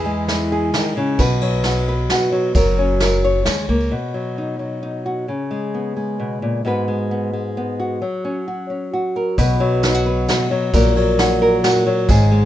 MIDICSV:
0, 0, Header, 1, 4, 480
1, 0, Start_track
1, 0, Key_signature, 5, "major"
1, 0, Tempo, 453858
1, 1257, Time_signature, 3, 2, 24, 8
1, 13168, End_track
2, 0, Start_track
2, 0, Title_t, "Nylon-string guitar"
2, 0, Program_c, 0, 24
2, 0, Note_on_c, 0, 52, 69
2, 0, Note_on_c, 0, 68, 65
2, 59, Note_on_c, 0, 56, 63
2, 305, Note_on_c, 0, 64, 52
2, 540, Note_off_c, 0, 68, 0
2, 551, Note_on_c, 0, 68, 57
2, 776, Note_off_c, 0, 52, 0
2, 788, Note_on_c, 0, 51, 69
2, 1020, Note_off_c, 0, 51, 0
2, 1025, Note_on_c, 0, 49, 69
2, 1229, Note_off_c, 0, 56, 0
2, 1232, Note_off_c, 0, 64, 0
2, 1261, Note_off_c, 0, 49, 0
2, 1261, Note_on_c, 0, 47, 68
2, 1263, Note_off_c, 0, 68, 0
2, 1267, Note_on_c, 0, 71, 68
2, 1502, Note_on_c, 0, 54, 65
2, 1749, Note_on_c, 0, 66, 54
2, 1980, Note_off_c, 0, 71, 0
2, 1993, Note_on_c, 0, 71, 56
2, 2230, Note_off_c, 0, 66, 0
2, 2234, Note_on_c, 0, 66, 65
2, 2453, Note_off_c, 0, 54, 0
2, 2457, Note_on_c, 0, 54, 66
2, 2670, Note_off_c, 0, 47, 0
2, 2676, Note_off_c, 0, 71, 0
2, 2699, Note_off_c, 0, 54, 0
2, 2703, Note_on_c, 0, 54, 69
2, 2712, Note_on_c, 0, 70, 66
2, 2945, Note_on_c, 0, 61, 60
2, 3185, Note_off_c, 0, 70, 0
2, 3198, Note_on_c, 0, 70, 61
2, 3428, Note_off_c, 0, 70, 0
2, 3432, Note_on_c, 0, 73, 56
2, 3655, Note_off_c, 0, 54, 0
2, 3660, Note_on_c, 0, 56, 58
2, 3691, Note_off_c, 0, 66, 0
2, 3898, Note_off_c, 0, 56, 0
2, 3902, Note_on_c, 0, 58, 62
2, 4114, Note_off_c, 0, 61, 0
2, 4117, Note_off_c, 0, 73, 0
2, 4139, Note_on_c, 0, 47, 51
2, 4141, Note_off_c, 0, 58, 0
2, 4380, Note_on_c, 0, 54, 44
2, 4632, Note_on_c, 0, 63, 39
2, 4844, Note_off_c, 0, 54, 0
2, 4857, Note_on_c, 0, 54, 43
2, 5092, Note_off_c, 0, 63, 0
2, 5105, Note_on_c, 0, 63, 46
2, 5349, Note_on_c, 0, 66, 46
2, 5556, Note_off_c, 0, 47, 0
2, 5557, Note_off_c, 0, 63, 0
2, 5559, Note_off_c, 0, 66, 0
2, 5582, Note_off_c, 0, 54, 0
2, 5588, Note_on_c, 0, 49, 50
2, 5824, Note_on_c, 0, 56, 50
2, 6076, Note_on_c, 0, 59, 38
2, 6305, Note_off_c, 0, 56, 0
2, 6309, Note_on_c, 0, 56, 43
2, 6553, Note_on_c, 0, 47, 48
2, 6789, Note_off_c, 0, 47, 0
2, 6793, Note_on_c, 0, 46, 51
2, 7004, Note_off_c, 0, 56, 0
2, 7025, Note_off_c, 0, 46, 0
2, 7029, Note_on_c, 0, 44, 57
2, 7032, Note_off_c, 0, 59, 0
2, 7035, Note_off_c, 0, 49, 0
2, 7035, Note_on_c, 0, 56, 45
2, 7044, Note_on_c, 0, 59, 47
2, 7050, Note_on_c, 0, 66, 44
2, 7059, Note_on_c, 0, 71, 50
2, 7262, Note_off_c, 0, 56, 0
2, 7275, Note_on_c, 0, 56, 51
2, 7509, Note_off_c, 0, 59, 0
2, 7521, Note_on_c, 0, 59, 43
2, 7744, Note_off_c, 0, 56, 0
2, 7757, Note_on_c, 0, 56, 44
2, 7995, Note_off_c, 0, 59, 0
2, 8007, Note_on_c, 0, 59, 46
2, 8240, Note_off_c, 0, 66, 0
2, 8245, Note_on_c, 0, 66, 48
2, 8450, Note_off_c, 0, 56, 0
2, 8463, Note_off_c, 0, 71, 0
2, 8477, Note_off_c, 0, 44, 0
2, 8478, Note_on_c, 0, 54, 52
2, 8484, Note_off_c, 0, 59, 0
2, 8721, Note_on_c, 0, 61, 48
2, 8961, Note_off_c, 0, 66, 0
2, 8965, Note_on_c, 0, 66, 38
2, 9187, Note_off_c, 0, 61, 0
2, 9200, Note_on_c, 0, 61, 43
2, 9437, Note_off_c, 0, 66, 0
2, 9450, Note_on_c, 0, 66, 46
2, 9689, Note_on_c, 0, 70, 48
2, 9891, Note_off_c, 0, 61, 0
2, 9895, Note_off_c, 0, 70, 0
2, 9896, Note_off_c, 0, 66, 0
2, 9920, Note_on_c, 0, 47, 75
2, 9926, Note_on_c, 0, 71, 69
2, 10143, Note_off_c, 0, 54, 0
2, 10156, Note_on_c, 0, 54, 66
2, 10396, Note_on_c, 0, 63, 57
2, 10518, Note_off_c, 0, 63, 0
2, 10518, Note_on_c, 0, 66, 54
2, 10626, Note_off_c, 0, 71, 0
2, 10639, Note_on_c, 0, 71, 57
2, 10866, Note_off_c, 0, 66, 0
2, 10878, Note_on_c, 0, 66, 61
2, 11105, Note_off_c, 0, 54, 0
2, 11117, Note_on_c, 0, 54, 65
2, 11325, Note_off_c, 0, 47, 0
2, 11326, Note_off_c, 0, 66, 0
2, 11326, Note_off_c, 0, 71, 0
2, 11358, Note_on_c, 0, 46, 77
2, 11363, Note_on_c, 0, 70, 68
2, 11581, Note_off_c, 0, 54, 0
2, 11593, Note_on_c, 0, 54, 67
2, 11841, Note_on_c, 0, 66, 57
2, 12062, Note_off_c, 0, 70, 0
2, 12075, Note_on_c, 0, 70, 61
2, 12304, Note_off_c, 0, 66, 0
2, 12316, Note_on_c, 0, 66, 70
2, 12536, Note_off_c, 0, 54, 0
2, 12549, Note_on_c, 0, 54, 69
2, 12756, Note_off_c, 0, 46, 0
2, 12757, Note_off_c, 0, 70, 0
2, 12759, Note_off_c, 0, 66, 0
2, 12785, Note_off_c, 0, 54, 0
2, 12791, Note_on_c, 0, 44, 76
2, 12799, Note_on_c, 0, 68, 69
2, 13025, Note_on_c, 0, 56, 65
2, 13168, Note_off_c, 0, 44, 0
2, 13168, Note_off_c, 0, 56, 0
2, 13168, Note_off_c, 0, 68, 0
2, 13168, End_track
3, 0, Start_track
3, 0, Title_t, "Upright bass"
3, 0, Program_c, 1, 32
3, 0, Note_on_c, 1, 40, 93
3, 738, Note_off_c, 1, 40, 0
3, 1260, Note_on_c, 1, 35, 98
3, 2176, Note_off_c, 1, 35, 0
3, 2697, Note_on_c, 1, 30, 92
3, 3615, Note_off_c, 1, 30, 0
3, 3664, Note_on_c, 1, 39, 82
3, 3878, Note_off_c, 1, 39, 0
3, 3899, Note_on_c, 1, 37, 85
3, 4115, Note_off_c, 1, 37, 0
3, 9924, Note_on_c, 1, 35, 96
3, 10836, Note_off_c, 1, 35, 0
3, 11359, Note_on_c, 1, 34, 92
3, 12267, Note_off_c, 1, 34, 0
3, 12786, Note_on_c, 1, 32, 96
3, 13168, Note_off_c, 1, 32, 0
3, 13168, End_track
4, 0, Start_track
4, 0, Title_t, "Drums"
4, 299, Note_on_c, 9, 38, 69
4, 299, Note_on_c, 9, 51, 48
4, 307, Note_on_c, 9, 54, 92
4, 405, Note_off_c, 9, 38, 0
4, 405, Note_off_c, 9, 51, 0
4, 413, Note_off_c, 9, 54, 0
4, 779, Note_on_c, 9, 38, 78
4, 779, Note_on_c, 9, 51, 51
4, 791, Note_on_c, 9, 54, 99
4, 885, Note_off_c, 9, 38, 0
4, 885, Note_off_c, 9, 51, 0
4, 896, Note_off_c, 9, 54, 0
4, 1253, Note_on_c, 9, 51, 56
4, 1258, Note_on_c, 9, 36, 99
4, 1267, Note_on_c, 9, 54, 94
4, 1359, Note_off_c, 9, 51, 0
4, 1363, Note_off_c, 9, 36, 0
4, 1372, Note_off_c, 9, 54, 0
4, 1493, Note_on_c, 9, 51, 56
4, 1599, Note_off_c, 9, 51, 0
4, 1730, Note_on_c, 9, 38, 66
4, 1730, Note_on_c, 9, 51, 50
4, 1746, Note_on_c, 9, 54, 94
4, 1836, Note_off_c, 9, 38, 0
4, 1836, Note_off_c, 9, 51, 0
4, 1852, Note_off_c, 9, 54, 0
4, 2217, Note_on_c, 9, 38, 73
4, 2217, Note_on_c, 9, 51, 54
4, 2223, Note_on_c, 9, 54, 109
4, 2322, Note_off_c, 9, 38, 0
4, 2322, Note_off_c, 9, 51, 0
4, 2328, Note_off_c, 9, 54, 0
4, 2694, Note_on_c, 9, 51, 52
4, 2695, Note_on_c, 9, 36, 92
4, 2700, Note_on_c, 9, 54, 104
4, 2799, Note_off_c, 9, 51, 0
4, 2801, Note_off_c, 9, 36, 0
4, 2806, Note_off_c, 9, 54, 0
4, 2826, Note_on_c, 9, 54, 32
4, 2931, Note_off_c, 9, 54, 0
4, 3176, Note_on_c, 9, 38, 65
4, 3176, Note_on_c, 9, 51, 50
4, 3179, Note_on_c, 9, 54, 98
4, 3282, Note_off_c, 9, 38, 0
4, 3282, Note_off_c, 9, 51, 0
4, 3284, Note_off_c, 9, 54, 0
4, 3303, Note_on_c, 9, 54, 31
4, 3409, Note_off_c, 9, 54, 0
4, 3653, Note_on_c, 9, 38, 76
4, 3653, Note_on_c, 9, 51, 49
4, 3663, Note_on_c, 9, 54, 97
4, 3759, Note_off_c, 9, 38, 0
4, 3759, Note_off_c, 9, 51, 0
4, 3769, Note_off_c, 9, 54, 0
4, 4024, Note_on_c, 9, 54, 31
4, 4130, Note_off_c, 9, 54, 0
4, 9920, Note_on_c, 9, 36, 92
4, 9921, Note_on_c, 9, 51, 56
4, 9926, Note_on_c, 9, 54, 89
4, 10026, Note_off_c, 9, 36, 0
4, 10027, Note_off_c, 9, 51, 0
4, 10032, Note_off_c, 9, 54, 0
4, 10398, Note_on_c, 9, 54, 93
4, 10401, Note_on_c, 9, 38, 76
4, 10401, Note_on_c, 9, 51, 50
4, 10504, Note_off_c, 9, 54, 0
4, 10507, Note_off_c, 9, 38, 0
4, 10507, Note_off_c, 9, 51, 0
4, 10878, Note_on_c, 9, 54, 99
4, 10883, Note_on_c, 9, 38, 77
4, 10883, Note_on_c, 9, 51, 54
4, 10984, Note_off_c, 9, 54, 0
4, 10989, Note_off_c, 9, 38, 0
4, 10989, Note_off_c, 9, 51, 0
4, 11355, Note_on_c, 9, 36, 100
4, 11356, Note_on_c, 9, 51, 51
4, 11360, Note_on_c, 9, 54, 106
4, 11461, Note_off_c, 9, 36, 0
4, 11462, Note_off_c, 9, 51, 0
4, 11465, Note_off_c, 9, 54, 0
4, 11597, Note_on_c, 9, 51, 51
4, 11703, Note_off_c, 9, 51, 0
4, 11832, Note_on_c, 9, 38, 73
4, 11832, Note_on_c, 9, 51, 53
4, 11842, Note_on_c, 9, 54, 95
4, 11938, Note_off_c, 9, 38, 0
4, 11938, Note_off_c, 9, 51, 0
4, 11947, Note_off_c, 9, 54, 0
4, 12309, Note_on_c, 9, 38, 79
4, 12309, Note_on_c, 9, 51, 58
4, 12311, Note_on_c, 9, 54, 102
4, 12415, Note_off_c, 9, 38, 0
4, 12415, Note_off_c, 9, 51, 0
4, 12417, Note_off_c, 9, 54, 0
4, 12782, Note_on_c, 9, 51, 57
4, 12784, Note_on_c, 9, 36, 102
4, 12787, Note_on_c, 9, 54, 89
4, 12888, Note_off_c, 9, 51, 0
4, 12889, Note_off_c, 9, 36, 0
4, 12893, Note_off_c, 9, 54, 0
4, 13168, End_track
0, 0, End_of_file